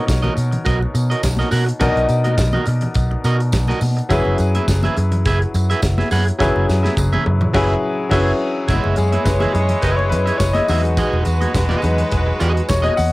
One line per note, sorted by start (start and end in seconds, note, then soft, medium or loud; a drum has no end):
0.00 1.76 B2 medium
0.00 1.76 B3 medium
0.00 1.76 D#4 medium
0.00 1.77 A#4 medium
0.00 1.78 C#5 medium
0.06 0.27 B1 loud
0.06 muted clean electric guitar stroke soft
0.06 kick loud
0.06 snare loud
0.06 closed hi-hat medium
0.06 tambourine medium
0.06 muted conga soft
0.22 0.34 F#4 medium
0.22 0.34 A#4 medium
0.22 0.35 D#5 medium
0.22 high conga medium
0.22 low conga medium
0.35 0.56 B2 loud
0.35 muted clean electric guitar stroke soft
0.35 closed hi-hat medium
0.35 tambourine soft
0.51 muted clean electric guitar stroke soft
0.51 closed hi-hat medium
0.51 low conga medium
0.65 0.85 B1 loud
0.65 0.81 F#4 medium
0.65 0.80 A#4 medium
0.65 0.80 D#5 medium
0.65 kick loud
0.65 closed hi-hat medium
0.65 muted conga soft
0.81 muted clean electric guitar stroke soft
0.81 muted conga soft
0.94 1.13 B2 loud
0.94 muted clean electric guitar stroke soft
0.94 closed hi-hat medium
0.94 tambourine medium
1.10 1.21 F#4 medium
1.10 1.21 A#4 medium
1.10 1.21 D#5 medium
1.10 closed hi-hat soft
1.23 1.42 B1 medium
1.23 muted clean electric guitar stroke soft
1.23 kick loud
1.23 snare loud
1.23 closed hi-hat medium
1.23 tambourine loud
1.23 muted conga soft
1.37 1.50 F#4 medium
1.37 1.50 A#4 medium
1.37 1.49 D#5 medium
1.37 snare soft
1.37 muted conga soft
1.37 high conga medium
1.51 1.71 B2 medium
1.51 1.67 F#4 medium
1.51 1.66 A#4 medium
1.51 1.66 F#5 medium
1.51 open hi-hat medium
1.51 tambourine medium
1.51 high conga medium
1.66 muted clean electric guitar stroke medium
1.66 closed hi-hat medium
1.79 1.90 B1 loud
1.79 4.05 B2 medium
1.79 4.06 B3 medium
1.79 4.06 D#4 medium
1.79 2.07 F#4 medium
1.79 2.07 A#4 medium
1.79 4.06 A#4 medium
1.79 1.88 D5 medium
1.79 2.07 D#5 loud
1.79 kick loud
1.79 closed hi-hat medium
1.79 tambourine medium
1.79 muted conga soft
1.79 low conga medium
1.88 4.10 D#5 medium
1.96 2.05 B1 medium
1.96 closed hi-hat soft
1.96 muted conga soft
2.09 2.39 B2 medium
2.09 muted clean electric guitar stroke soft
2.09 closed hi-hat medium
2.09 tambourine medium
2.24 2.36 F#4 medium
2.24 2.35 A#4 medium
2.24 2.35 D#5 medium
2.24 closed hi-hat soft
2.24 high conga medium
2.38 2.57 B1 medium
2.38 muted clean electric guitar stroke soft
2.38 kick loud
2.38 snare loud
2.38 closed hi-hat medium
2.38 tambourine medium
2.38 muted conga soft
2.53 2.67 F#4 medium
2.53 2.67 A#4 medium
2.53 2.67 D#5 medium
2.53 muted conga soft
2.53 high conga medium
2.53 low conga medium
2.66 2.86 B2 loud
2.66 muted clean electric guitar stroke soft
2.66 closed hi-hat medium
2.66 tambourine soft
2.81 muted clean electric guitar stroke soft
2.81 closed hi-hat soft
2.81 low conga medium
2.94 3.14 B1 loud
2.94 muted clean electric guitar stroke soft
2.94 kick loud
2.94 closed hi-hat medium
2.94 tambourine soft
2.94 muted conga soft
3.11 muted clean electric guitar stroke soft
3.11 muted conga soft
3.24 3.55 B2 loud
3.24 3.40 F#4 medium
3.24 3.39 A#4 medium
3.24 3.38 D#5 medium
3.24 closed hi-hat medium
3.24 tambourine medium
3.39 muted clean electric guitar stroke soft
3.39 closed hi-hat soft
3.52 3.72 B1 loud
3.52 muted clean electric guitar stroke soft
3.52 kick loud
3.52 snare loud
3.52 closed hi-hat medium
3.52 tambourine medium
3.52 muted conga soft
3.68 3.80 F#4 medium
3.68 3.81 A#4 medium
3.68 3.81 D#5 medium
3.68 snare soft
3.68 high conga medium
3.81 4.00 B2 loud
3.81 muted clean electric guitar stroke soft
3.81 open hi-hat medium
3.81 tambourine medium
3.81 high conga medium
3.97 muted clean electric guitar stroke soft
3.97 closed hi-hat soft
4.09 4.20 F#1 loud
4.09 6.35 F#3 medium
4.09 6.35 C#4 medium
4.09 6.36 E4 medium
4.09 4.36 G#4 medium
4.09 6.36 G#4 medium
4.09 4.36 B4 medium
4.09 6.37 B4 medium
4.09 4.37 E5 loud
4.09 kick loud
4.09 closed hi-hat medium
4.09 tambourine soft
4.09 muted conga soft
4.09 low conga medium
4.25 4.34 F#1 medium
4.25 muted conga soft
4.38 4.58 F#2 loud
4.38 muted clean electric guitar stroke soft
4.38 closed hi-hat medium
4.38 tambourine medium
4.55 4.66 G#4 soft
4.55 4.66 B4 medium
4.55 4.65 E5 medium
4.55 closed hi-hat soft
4.55 high conga medium
4.68 4.86 F#1 loud
4.68 muted clean electric guitar stroke soft
4.68 kick loud
4.68 snare loud
4.68 closed hi-hat medium
4.68 tambourine medium
4.68 muted conga soft
4.83 4.97 G#4 medium
4.83 4.97 B4 medium
4.83 4.97 E5 medium
4.83 closed hi-hat soft
4.83 muted conga soft
4.83 high conga medium
4.83 low conga medium
4.97 5.27 F#2 loud
4.97 muted clean electric guitar stroke soft
4.97 closed hi-hat medium
4.97 tambourine soft
5.12 muted clean electric guitar stroke medium
5.12 closed hi-hat soft
5.12 low conga medium
5.25 5.44 F#1 loud
5.25 5.41 G#4 medium
5.25 5.41 B4 medium
5.25 5.40 E5 loud
5.25 kick loud
5.25 closed hi-hat medium
5.25 tambourine soft
5.41 muted clean electric guitar stroke soft
5.41 closed hi-hat soft
5.54 5.73 F#2 medium
5.54 muted clean electric guitar stroke soft
5.54 closed hi-hat medium
5.54 tambourine medium
5.70 5.81 G#4 medium
5.70 5.80 B4 medium
5.70 5.80 E5 medium
5.70 closed hi-hat medium
5.82 6.01 F#1 loud
5.82 muted clean electric guitar stroke soft
5.82 kick loud
5.82 snare loud
5.82 closed hi-hat medium
5.82 tambourine medium
5.82 muted conga soft
5.98 6.09 G#4 soft
5.98 6.08 B4 medium
5.98 6.08 E5 medium
5.98 snare soft
5.98 muted conga soft
5.98 high conga medium
6.11 6.30 F#2 loud
6.11 6.26 G#4 medium
6.11 6.26 B4 medium
6.11 6.27 F#5 loud
6.11 open hi-hat medium
6.11 tambourine medium
6.11 high conga medium
6.27 muted clean electric guitar stroke soft
6.27 closed hi-hat soft
6.38 6.50 F#1 loud
6.38 7.51 F#3 medium
6.38 7.52 C#4 medium
6.38 7.52 E4 medium
6.38 6.66 G#4 medium
6.38 7.52 G#4 medium
6.38 6.66 B4 medium
6.38 7.53 B4 medium
6.38 6.66 E5 medium
6.38 kick loud
6.38 snare medium
6.38 tambourine soft
6.38 muted conga soft
6.38 low conga medium
6.56 6.64 F#1 loud
6.56 muted conga soft
6.68 6.87 F#2 loud
6.68 muted clean electric guitar stroke soft
6.68 snare medium
6.68 tambourine medium
6.83 6.94 G#4 soft
6.83 6.94 B4 medium
6.83 6.94 E5 medium
6.83 snare medium
6.83 high conga medium
6.97 7.16 F#1 loud
6.97 muted clean electric guitar stroke medium
6.97 kick loud
6.97 high tom medium
6.97 tambourine medium
6.97 muted conga soft
7.13 7.25 G#4 medium
7.13 7.26 B4 medium
7.13 7.26 E5 medium
7.13 high conga medium
7.13 low conga medium
7.26 7.45 F#2 loud
7.26 muted clean electric guitar stroke soft
7.26 high tom medium
7.41 muted clean electric guitar stroke soft
7.41 mid tom medium
7.41 low conga medium
7.53 7.74 F#1 medium
7.53 7.73 F#3 loud
7.53 7.74 C#4 medium
7.53 7.74 E4 loud
7.53 7.74 G#4 medium
7.53 7.75 G#4 loud
7.53 7.74 B4 loud
7.53 7.75 B4 medium
7.53 7.74 E5 medium
7.53 kick loud
7.53 snare loud
7.53 crash medium
8.09 8.31 F#1 loud
8.09 8.30 F#3 medium
8.09 8.31 C#4 medium
8.09 8.31 E4 loud
8.09 8.31 G#4 medium
8.09 8.32 G#4 medium
8.09 8.31 B4 medium
8.09 8.32 B4 medium
8.09 8.31 E5 loud
8.09 kick loud
8.09 snare loud
8.09 crash medium
8.67 8.78 F#1 loud
8.67 10.64 G#3 medium
8.67 10.65 G#3 medium
8.67 10.65 B3 medium
8.67 10.64 E4 medium
8.67 10.65 E4 medium
8.67 8.95 G#4 medium
8.67 8.95 B4 medium
8.67 10.65 C#5 medium
8.67 8.96 E5 medium
8.67 kick loud
8.67 closed hi-hat medium
8.67 tambourine medium
8.67 muted conga soft
8.67 low conga medium
8.84 8.93 F#1 medium
8.84 muted conga soft
8.96 9.16 F#2 medium
8.96 9.24 G#4 medium
8.96 muted clean electric guitar stroke soft
8.96 closed hi-hat medium
8.96 tambourine medium
9.12 9.24 G#4 medium
9.12 9.24 B4 medium
9.12 9.23 E5 medium
9.12 closed hi-hat soft
9.12 high conga medium
9.24 9.44 F#1 medium
9.24 9.41 B4 medium
9.24 muted clean electric guitar stroke soft
9.24 kick loud
9.24 snare loud
9.24 closed hi-hat medium
9.24 tambourine medium
9.39 9.52 G#4 medium
9.39 9.53 G#4 medium
9.39 9.54 B4 medium
9.39 9.54 E5 medium
9.39 closed hi-hat soft
9.39 muted conga soft
9.39 high conga medium
9.39 low conga medium
9.53 9.73 F#2 loud
9.53 9.80 G#4 medium
9.53 muted clean electric guitar stroke soft
9.53 closed hi-hat soft
9.69 muted clean electric guitar stroke soft
9.69 closed hi-hat medium
9.69 low conga medium
9.81 10.13 F#1 medium
9.81 10.03 G#4 medium
9.81 9.98 B4 medium
9.81 9.97 B4 medium
9.81 9.96 E5 medium
9.81 kick medium
9.81 closed hi-hat medium
9.81 tambourine soft
9.81 muted conga soft
9.96 10.11 C#5 medium
9.96 muted clean electric guitar stroke medium
9.96 muted conga soft
10.09 10.30 F#2 medium
10.09 10.37 B4 medium
10.09 muted clean electric guitar stroke soft
10.09 closed hi-hat medium
10.09 tambourine medium
10.26 10.38 G#4 medium
10.26 10.38 B4 medium
10.26 10.37 E5 medium
10.26 closed hi-hat soft
10.38 10.59 F#1 medium
10.38 10.55 C#5 medium
10.38 muted clean electric guitar stroke soft
10.38 kick loud
10.38 snare loud
10.38 closed hi-hat medium
10.38 tambourine medium
10.38 muted conga soft
10.53 10.67 G#4 soft
10.53 10.66 B4 medium
10.53 11.36 D#5 loud
10.53 10.66 E5 medium
10.53 snare soft
10.53 closed hi-hat soft
10.53 muted conga soft
10.53 high conga medium
10.67 10.98 E2 loud
10.67 11.50 F#3 medium
10.67 11.50 G#3 soft
10.67 13.12 G#3 medium
10.67 11.51 D#4 medium
10.67 13.12 F#4 medium
10.67 10.85 F#4 medium
10.67 10.84 G#4 medium
10.67 13.12 B4 loud
10.67 10.84 E5 loud
10.67 open hi-hat medium
10.67 tambourine medium
10.67 high conga medium
10.84 muted clean electric guitar stroke soft
10.84 closed hi-hat soft
10.97 11.24 F#4 medium
10.97 11.24 G#4 medium
10.97 11.25 D#5 medium
10.97 kick loud
10.97 closed hi-hat medium
10.97 tambourine medium
10.97 muted conga soft
10.97 low conga medium
11.13 11.22 E1 loud
11.13 muted conga soft
11.25 11.45 E2 loud
11.25 muted clean electric guitar stroke soft
11.25 closed hi-hat medium
11.25 tambourine soft
11.41 11.52 F#4 soft
11.41 11.52 G#4 soft
11.41 11.52 D#5 medium
11.41 closed hi-hat soft
11.41 high conga medium
11.54 11.73 E1 loud
11.54 muted clean electric guitar stroke soft
11.54 kick loud
11.54 snare loud
11.54 closed hi-hat medium
11.54 tambourine medium
11.54 muted conga soft
11.69 11.81 F#4 medium
11.69 11.82 G#4 medium
11.69 11.83 D#5 medium
11.69 closed hi-hat soft
11.69 muted conga soft
11.69 high conga medium
11.69 low conga medium
11.82 12.02 E2 loud
11.82 12.09 F#3 soft
11.82 12.09 G#3 soft
11.82 12.09 D#4 soft
11.82 muted clean electric guitar stroke soft
11.82 closed hi-hat soft
11.82 tambourine soft
11.98 muted clean electric guitar stroke soft
11.98 closed hi-hat medium
11.98 low conga medium
12.11 12.31 E1 medium
12.11 muted clean electric guitar stroke soft
12.11 kick medium
12.11 closed hi-hat medium
12.11 tambourine soft
12.11 muted conga soft
12.27 muted clean electric guitar stroke medium
12.40 12.60 E2 loud
12.40 12.61 F#4 medium
12.40 12.54 G#4 medium
12.40 12.53 D#5 medium
12.40 closed hi-hat medium
12.40 tambourine medium
12.55 muted clean electric guitar stroke medium
12.55 closed hi-hat soft
12.68 12.88 E1 loud
12.68 12.83 C#5 medium
12.68 muted clean electric guitar stroke soft
12.68 kick loud
12.68 snare loud
12.68 closed hi-hat medium
12.68 tambourine loud
12.82 12.95 F#4 medium
12.82 12.95 G#4 medium
12.82 12.96 D#5 medium
12.82 12.98 D#5 medium
12.82 closed hi-hat soft
12.82 high conga medium
12.96 13.12 E2 loud
12.96 13.12 F#5 medium
12.96 muted clean electric guitar stroke soft
12.96 open hi-hat medium
12.96 tambourine medium
12.96 high conga medium